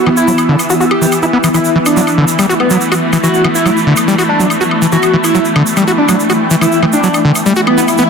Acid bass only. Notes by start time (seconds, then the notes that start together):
0.06 E3
0.28 F#3
0.49 D3
0.70 F#4
0.80 F#4
1.02 E3
1.23 E4
1.33 B3
1.44 E3
1.54 E3
1.75 E3
1.97 F#3
2.18 D3
2.39 G3
2.49 F#4
2.71 F#3
2.92 F#4
3.13 E3
3.23 E3
3.45 E3
3.66 F#3
3.87 D3
4.08 G3
4.18 F#4
4.40 F#3
4.61 F#4
4.82 E3
4.92 E3
5.14 E3
5.35 F#3
5.56 D3
5.77 G3
5.87 F#4
6.09 F#3
6.30 F#4
6.51 E3
6.61 E3
6.83 E3
7.04 F#3
7.25 D3
7.46 G3
7.56 F#4
7.78 B3
7.99 B3